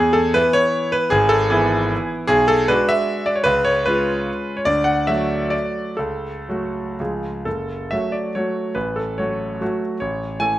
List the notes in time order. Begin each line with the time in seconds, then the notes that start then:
Already playing: E2 G#4
0.13 A4
0.34 E3 B3 E4 B4
0.53 C#5
0.92 B4
1.10 G#1 G#4
1.29 A4
1.50 E3 B3 E4 G#4
2.27 B1 G#4
2.48 A4
2.68 G#3 D4 F#4 B4
2.89 E5
3.26 D5
3.36 C#5
3.44 C#2 B4
3.65 C#5
3.86 G#3 C#4 F4 B4
4.57 C#5
4.65 D2 D5
4.84 F#5
5.07 F#3 A3 F#4 E5
5.50 D5
5.97 C#2 A4
6.49 F#3 A3 F#4
7.00 C#2 F3 G#3 G#4
7.45 F#1 A4
7.91 F#3 A3 F#4 E5
8.12 D5
8.35 F#3 A3 F#4 C#5
8.75 A1 B4
8.96 A4
9.18 F#3 A3 F#4 C#5
9.61 F#3 A3 F#4
10.00 A1 C#5
10.40 E3 A3 A4 G#5